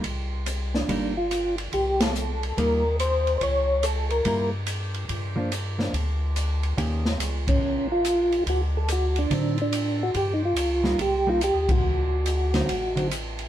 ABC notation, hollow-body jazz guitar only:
X:1
M:4/4
L:1/8
Q:"Swing" 1/4=142
K:Cdor
V:1 name="Hollow-body jazz guitar"
z4 [G,B,E] z3 | z4 [G,B,E] z3 | z4 [G,^A,=E] z3 | z [F,B,D] z [F,B,D] z4 |
[E,B,_DG] z6 z | z4 [D,^F,CE] z3 | z3 [G,B,E] z [G,B,E] z2 | z3 [D,^F,CE] z [D,F,CE] z2 |]